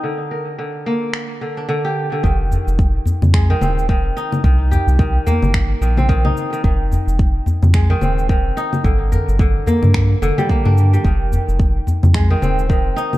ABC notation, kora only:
X:1
M:4/4
L:1/16
Q:"Swing 16ths" 1/4=109
K:Gphr
V:1 name="Kora" clef=bass
D, z B2 D,2 B,4 D, D D, G z D, | E, z6 z A, E, C2 E,2 E2 | E, z G2 E,2 B,4 E, C E, E z E, | E, z6 z A, E, C2 E,2 E2 |
D, z B2 D,2 B,4 D, G, B, D z G, | E, z6 z A, E, C2 E,2 E2 |]